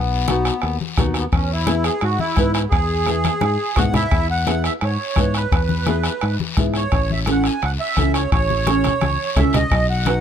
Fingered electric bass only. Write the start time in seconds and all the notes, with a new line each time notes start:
Already playing: B1
0.63 D#2
0.98 D#2
1.32 E2
2.02 G#2
2.37 G#2
2.72 E2
3.42 G#2
3.77 G#2
4.12 E2
4.82 G#2
5.17 G#2
5.52 E2
6.23 G#2
6.57 G#2
6.92 A1
7.63 C#2
7.97 C#2
8.32 A1
9.02 C#2
9.36 C#2
9.71 B1